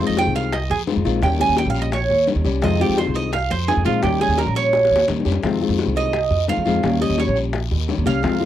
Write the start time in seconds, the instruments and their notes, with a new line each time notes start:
0.00 nylon-string guitar D#3 G#3 C4 F4, high bongo
0.07 upright bass F2, cuban tres D#5
0.17 cuban tres G5, high bongo, short guiro
0.27 upright bass C2
0.35 cuban tres F5, high bongo, short guiro
0.53 cuban tres D#5, muted nylon-string guitar stroke, high bongo, long guiro
0.70 upright bass F2, cuban tres G#4, high bongo
0.87 nylon-string guitar D#3 G#3 C4 F4, high bongo, low bongo, short guiro
0.96 upright bass F2
1.05 upright bass A#1, nylon-string guitar D#3 G#3 C4 F4, short guiro
1.22 upright bass D#2, nylon-string guitar D#3 G3 C#4 G4, cuban tres G5, high bongo, long guiro
1.40 nylon-string guitar G3 C#4 G4, cuban tres G#5, high bongo
1.48 upright bass D#2
1.57 cuban tres G5, high bongo, short guiro
1.66 upright bass A#1
1.70 cuban tres F5
1.75 high bongo, short guiro
1.82 cuban tres D#5
1.92 cuban tres C#5, muted nylon-string guitar stroke, high bongo, long guiro
2.09 upright bass D#2, high bongo
2.27 nylon-string guitar D#3 G3 C#4 G4, high bongo, low bongo, short guiro
2.35 upright bass D#2
2.44 upright bass C2, nylon-string guitar G3 C#4 G4, short guiro
2.61 upright bass F2, nylon-string guitar C3 D#3 G#3 C4 F4, cuban tres D#5, high bongo, long guiro
2.80 nylon-string guitar D#3 G#3 C4 F4, cuban tres G4, high bongo
2.89 upright bass F2
2.97 cuban tres C5, high bongo, short guiro
3.07 upright bass C2
3.14 cuban tres D#5, high bongo, short guiro
3.32 cuban tres F5, muted nylon-string guitar stroke, high bongo, long guiro
3.50 upright bass F2, cuban tres C5, high bongo
3.67 nylon-string guitar D#3 G#3 C4 F4, cuban tres G#4, high bongo, low bongo, short guiro
3.77 upright bass F2
3.85 upright bass A#1, nylon-string guitar D#3 G#3 C4 F4, cuban tres F4, short guiro
4.02 upright bass D#2, nylon-string guitar D#3 G3 C#4 G4, cuban tres G4, high bongo, long guiro
4.20 nylon-string guitar G3 C#4 G4, cuban tres G#4, high bongo
4.28 upright bass D#2
4.38 cuban tres A#4, high bongo, short guiro
4.46 upright bass A#1
4.55 cuban tres C#5, high bongo, short guiro
4.73 muted nylon-string guitar stroke, high bongo, long guiro
4.85 high bongo
4.91 upright bass D#2
4.96 high bongo
5.07 upright bass D#2, nylon-string guitar D#3 G3 C#4 G4, low bongo, short guiro
5.20 low bongo
5.25 upright bass F2, nylon-string guitar G3 C#4 G4, short guiro
5.32 low bongo
5.43 upright bass F2, nylon-string guitar C3 D#3 G#3 C4 F4, high bongo, long guiro
5.61 nylon-string guitar D#3 G#3 C4 F4, high bongo
5.69 upright bass F2
5.78 high bongo, short guiro
5.86 upright bass C2
5.96 cuban tres D#5, high bongo, short guiro
6.13 muted nylon-string guitar stroke, high bongo, long guiro
6.31 upright bass F2, high bongo
6.48 nylon-string guitar D#3 G#3 C4 F4, cuban tres F5, high bongo, low bongo, short guiro
6.57 upright bass F2
6.65 upright bass F2, nylon-string guitar D#3 G#3 C4 F4, short guiro
6.83 upright bass D#2, nylon-string guitar D#3 G3 C#4 G4, high bongo, long guiro
7.01 nylon-string guitar G3 C#4 G4, cuban tres D#5, high bongo
7.10 upright bass D#2
7.18 cuban tres C#5, high bongo, short guiro
7.27 upright bass A#1
7.35 high bongo, short guiro
7.53 muted nylon-string guitar stroke, high bongo, long guiro
7.71 upright bass D#2, high bongo
7.88 nylon-string guitar D#3 G3 C#4 G4, high bongo, low bongo, short guiro
7.98 upright bass D#2
8.06 upright bass C2, nylon-string guitar G3 C#4 G4, cuban tres F5, short guiro
8.22 upright bass F2, nylon-string guitar C3 D#3 G#3 C4 F4, high bongo, long guiro
8.40 nylon-string guitar G#3 C4 F4, high bongo